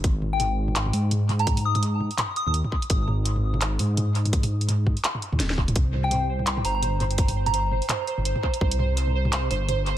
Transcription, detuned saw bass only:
X:1
M:4/4
L:1/16
Q:"Swing 16ths" 1/4=168
K:Ablyd
V:1 name="Detuned saw bass" clef=bass
A,,,8 A,,,2 A,,6- | A,,6- A,, z4 E,,2 z3 | A,,,8 A,,,2 A,,6- | A,,6- A,, z4 E,, E,,,2 E,,,2 |
C,,8 C,,2 G,,,6- | G,,,6- G,,, z4 G,,,2 z3 | C,,8 C,,2 G,,,6 |]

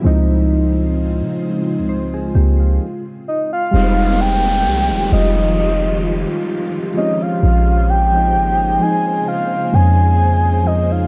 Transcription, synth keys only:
X:1
M:4/4
L:1/16
Q:"Swing 16ths" 1/4=65
K:Fm
V:1 name="Synth keys"
[F,A,CE]4- [F,A,CE] z3 [Ec] [CA] [B,G] [A,F]2 z3 | [G,A,CE]4 z2 [G,A,CF]4- [G,A,CF] z3 [F,A,CD]2- | [F,A,CD]2 z [F,A,CE]2 z [F,A,CE]2 z2 [F,A,CD]2 z2 [F,A,CE] z |]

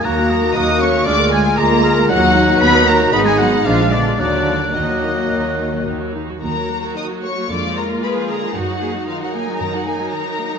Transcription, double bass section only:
X:1
M:4/4
L:1/8
Q:1/4=115
K:Ebm
V:1 name="Double bass section" clef=bass
E,,2 E,,2 =D,,2 D,,2 | E,,2 E,,2 A,,,2 B,,,2 | E,,2 E,,2 E,,2 E,,2 | E,,2 z2 F,,2 z2 |
G,,2 z2 G,,2 z2 |]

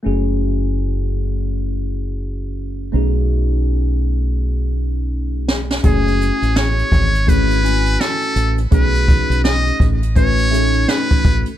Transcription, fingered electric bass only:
X:1
M:4/4
L:1/16
Q:"Swing 16ths" 1/4=83
K:F#m
V:1 name="Fingered electric bass" clef=bass
F,,,16 | B,,,16 | F,,,3 A,,,3 G,,,6 z2 A,,,2 | B,,,3 B,,,3 A,,,6 z2 A,,, z |]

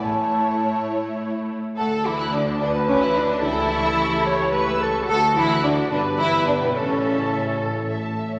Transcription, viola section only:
X:1
M:6/8
L:1/16
Q:3/8=72
K:A
V:1 name="Viola section"
[A,E]8- [A,E]2 z2 | [K:D] z6 B6 | A6 c2 B2 A2 | F6 B6 |
A8- A z3 |]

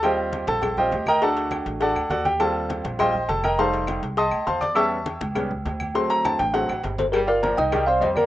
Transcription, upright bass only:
X:1
M:4/4
L:1/8
Q:1/4=203
K:Dphr
V:1 name="Upright bass" clef=bass
E,,3 B,,,3 D,,2- | D,,3 A,,,2 D,, E,,2- | E,,3 B,,,3 F,,,2- | F,,,3 C,,2 D,, =E,,2- |
=E,,3 ^C,,3 D,,2- | D,,3 A,,,2 A,,, G,,,2- | G,,,3 C,,3 F,,2 |]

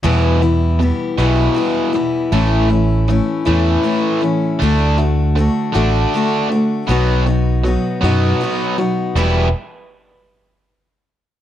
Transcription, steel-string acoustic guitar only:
X:1
M:6/8
L:1/8
Q:3/8=53
K:Edor
V:1 name="Steel-string acoustic guitar"
[E,,B,,E,G,B,E] [E,G,B,E] [E,G,B,E] [E,,B,,E,G,B,E] [E,G,B,E] [E,G,B,E] | [A,,E,A,CE] [A,CE] [E,A,CE] [A,,E,A,CE] [E,A,CE] [A,CE] | [D,A,DF] [A,DF] [D,A,DF] [D,A,DF] [D,A,DF] [A,DF] | [B,,F,B,^DF] [B,DF] [F,B,DF] [B,,F,B,DF] [F,B,DF] [B,DF] |
[E,,B,,E,G,B,G] z4 z |]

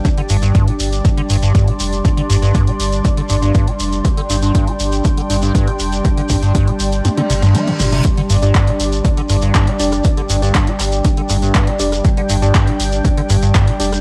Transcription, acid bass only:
X:1
M:4/4
L:1/16
Q:1/4=120
K:Cdor
V:1 name="Acid bass" clef=bass
G,, D, G,, G,, G,, C, z2 G,, D, G,, G,, G,, C, z2 | G,, D, G,, G,, G,, C, z2 G,, D, G,, G,, G,, C, z2 | G,, D, G,, G,, G,, C, z2 G,, D, G,, G,, G,, C, z2 | G,, D, G,, G,, G,, C, z2 G,, D, C, G,, B, G,, z C, |
G,, D, G,, G,, G,, C, z2 G,, D, G,, G,, G,, C, z2 | G,, D, G,, G,, G,, C, z2 G,, D, G,, G,, G,, C, z2 | G,, D, G,, G,, G,, C, z2 G,, D, G,, G,, G,, C, z2 |]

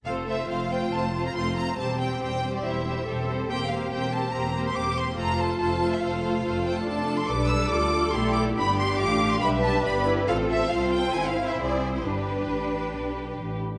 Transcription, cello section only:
X:1
M:4/4
L:1/8
Q:1/4=140
K:F
V:1 name="Cello section"
A2 F6 | C4 E2 A2 | G4 G4 | F8- |
[K:Gmix] F2 A4 A2 | G4 B4 | A2 F2 E4 | D6- D z |]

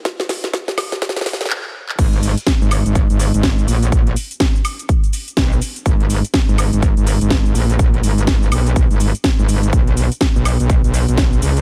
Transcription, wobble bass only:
X:1
M:4/4
L:1/16
Q:"Swing 16ths" 1/4=124
K:G#m
V:1 name="Wobble bass" clef=bass
z16 | G,,,3 z2 G,,,2 G,,,2 G,,,2 G,,,3 A,,,2- | A,,,2 z8 z2 B,,,2 z2 | G,,,3 z2 G,,,2 G,,,2 G,,,2 G,,,3 A,,,2- |
A,,,2 G,,,4 B,,,3 G,,,2 z2 G,,,3 | B,,,3 z2 B,,,2 B,,,2 B,,,2 B,,,3 C,,2 |]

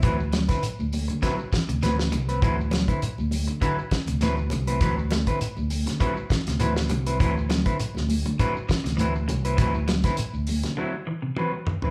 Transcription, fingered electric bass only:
X:1
M:4/4
L:1/16
Q:"Swing 16ths" 1/4=100
K:Dmix
V:1 name="Fingered electric bass" clef=bass
D,,3 D, z D,,2 D,2 z2 D,,3 C,,2 | D,,3 D, z D,,2 D,2 z2 D,,3 C,,2 | D,,3 D, z D,,2 D,2 z2 D,,3 C,,2 | D,,3 D, z D,,2 D,2 z2 D,,3 C,,2 |
D,,3 D, z D,,2 D, z8 |]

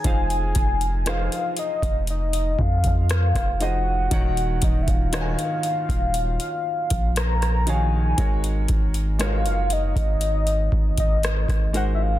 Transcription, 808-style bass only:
X:1
M:4/4
L:1/16
Q:1/4=59
K:Fphr
V:1 name="808-style bass" clef=bass
F,,,2 F,,,3 z2 F,,,3 F,,3 F,,,3 | E,,,2 E,,,3 z2 E,,,2 z2 B,,,4- B,,, | A,,,2 A,,,3 G,,,2 A,,,3 A,,,3 A,,,3 |]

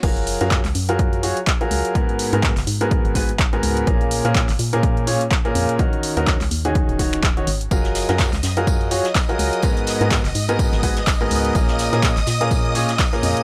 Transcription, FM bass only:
X:1
M:4/4
L:1/16
Q:"Swing 16ths" 1/4=125
K:F#
V:1 name="FM bass" clef=bass
F,,,3 F,,2 C,, F,,4- F,, z3 C,, z | z3 G,,2 F,,, G,,3 G,,,4- G,,, C,,2 | A,,,3 A,,2 G,,, A,,4- A,, z3 E,, z | z3 D,,2 C,, D,,3 D,,,4- D,,, G,,,2 |
F,,,3 F,,2 C,, F,,4- F,, z3 C,, z | z3 G,,2 F,,, G,,3 G,,,4- G,,, C,,2 | A,,,3 A,,2 G,,, A,,4- A,, z3 E,, z |]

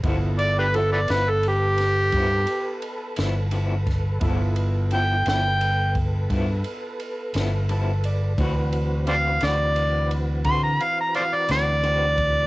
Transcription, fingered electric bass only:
X:1
M:12/8
L:1/8
Q:3/8=58
K:Gmix
V:1 name="Fingered electric bass" clef=bass
G,,,3 G,,,3 G,, z2 G,,,3 | G,,,3 G,,,3 G,, z2 G,,,3 | D,,3 D,,3 D, z2 D,,3 |]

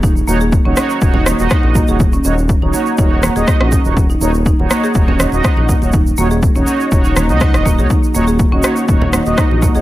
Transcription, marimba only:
X:1
M:4/4
L:1/16
Q:1/4=122
K:Ebm
V:1 name="Marimba"
E z B, A z D D z2 E B, z E z B, A | z D D z2 E B, z E z B, A z D D z | z E B, z E z B, A z D D z2 E B, z | E z B, A z D D z2 E B, z E z B, A |
E z B, A z D B, z2 E B, z E z B, A |]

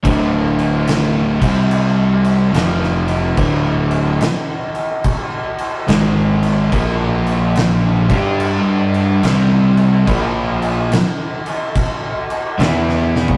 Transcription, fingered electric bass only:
X:1
M:4/4
L:1/8
Q:"Swing" 1/4=72
K:Dm
V:1 name="Fingered electric bass" clef=bass
D,,,3 C,,3 F,,,2 | D,,,2 z4 ^G,,,2 | B,,,3 G,,3 C,,2 | B,,,2 z4 E,,2 |]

